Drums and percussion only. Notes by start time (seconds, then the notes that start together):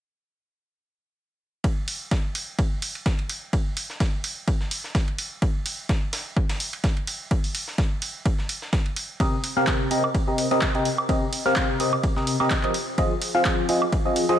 1.64 kick, ride
1.88 open hi-hat, ride
2.11 kick, snare, ride
2.35 open hi-hat, ride
2.59 kick, ride
2.82 open hi-hat, ride
2.95 ride
3.06 kick, snare, ride
3.19 ride
3.29 open hi-hat, ride
3.53 kick, ride
3.77 open hi-hat, ride
3.90 snare
4.00 kick, snare, ride
4.24 open hi-hat, ride
4.48 kick, ride
4.61 snare
4.71 open hi-hat, ride
4.84 snare
4.95 kick, snare, ride
5.08 ride
5.18 open hi-hat, ride
5.42 kick, ride
5.66 open hi-hat, ride
5.89 kick, snare, ride
6.13 snare, open hi-hat, ride
6.37 kick, ride
6.49 snare, ride
6.60 open hi-hat
6.73 ride
6.84 kick, snare, ride
6.97 ride
7.07 open hi-hat, ride
7.31 kick, ride
7.44 open hi-hat
7.55 open hi-hat, ride
7.68 snare
7.78 kick, snare, ride
8.02 open hi-hat, ride
8.26 kick, ride
8.39 snare
8.49 open hi-hat, ride
8.62 snare
8.73 kick, snare, ride
8.86 ride
8.96 open hi-hat, ride
9.20 kick, ride
9.44 open hi-hat, ride
9.67 kick, snare, clap, ride
9.91 open hi-hat, ride
10.04 high woodblock
10.15 kick, ride
10.38 open hi-hat, ride
10.51 ride
10.61 kick, snare, clap, ride
10.75 ride
10.85 open hi-hat, ride
10.98 high woodblock
11.09 kick, ride
11.33 open hi-hat, ride
11.46 snare
11.56 kick, snare, clap, ride
11.80 open hi-hat, ride
11.93 high woodblock
12.03 kick, ride
12.16 snare
12.27 open hi-hat, ride
12.40 snare, high woodblock
12.50 kick, snare, clap, ride
12.63 clap, ride
12.74 open hi-hat, ride
12.98 kick, ride
13.22 open hi-hat, ride
13.45 kick, snare, clap, ride
13.69 open hi-hat, ride
13.82 high woodblock
13.92 kick, ride
14.16 open hi-hat, ride
14.29 ride